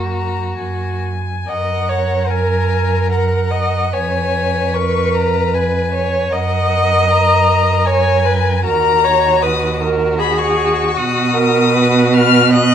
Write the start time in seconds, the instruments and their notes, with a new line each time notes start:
Already playing: cello F#2, viola A#3, violin F#4
0.10 violin A#5
0.57 cello F#2, violin G#5
1.48 cello F#2, violin A#4 F#5, viola D#5
1.89 viola C#5
2.29 viola A#4, violin G#5
3.09 viola A#4, violin F#5
3.51 viola D#5
3.93 cello F2, violin B4 G#5, viola C#5
4.74 viola A#4, violin C#6
5.14 violin A#5
5.54 viola B4, violin G#5
5.93 viola C#5
6.32 cello F#2, violin A#4 F#5, viola D#5
7.08 violin A#5
7.85 viola C#5, violin G#5
8.26 viola B4
8.64 cello D#2, violin F#4 A#5, viola A#4
9.04 viola C#5
9.42 viola B4, violin D#6
9.81 viola A#4
10.19 viola G#4, violin B5
10.38 violin C#6
10.96 cello B2, viola F#4, violin D#6
11.34 viola A#4
11.74 viola B4
12.13 violin F6
12.52 viola D#5, violin F#6